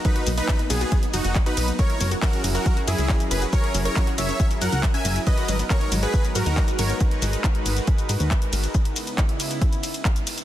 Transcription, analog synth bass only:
X:1
M:4/4
L:1/16
Q:1/4=138
K:G#m
V:1 name="Analog synth bass" clef=bass
z2 B,,, z3 B,,, z3 F,,, F,,, z2 B,,, z | z2 F,,, z3 F,,, z3 F,, C,, z2 F,,, z | z2 F,,, z3 F,,, z3 F,, C,, z2 F,,, z | z2 G,,, z3 G,,, z3 G,, D,, z2 G,,, z |
z2 G,,, z3 G,,, z3 G,, D,, z2 G,,, z | z16 |]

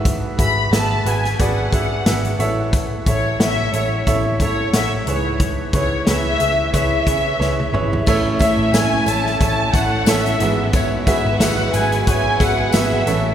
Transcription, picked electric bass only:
X:1
M:4/4
L:1/16
Q:"Swing 16ths" 1/4=90
K:A
V:1 name="Picked electric bass" clef=bass
G,,,2 G,,,2 G,,,2 G,,,2 G,,,2 G,,2 G,,,2 A,,,2- | A,,,2 A,,,2 A,,,2 A,,,2 A,,,2 A,,2 A,,,2 C,,2- | C,,2 C,,2 C,,2 C,,2 C,,2 C,2 C,,2 G,,,2 | A,,,2 z A,,, A,,,2 A,,,2 A,,,2 A,,,2 A,,,2 G,,,2- |
G,,,2 z G,,, G,,,2 G,,,2 G,,,2 G,,,2 G,,,2 A,,,2 |]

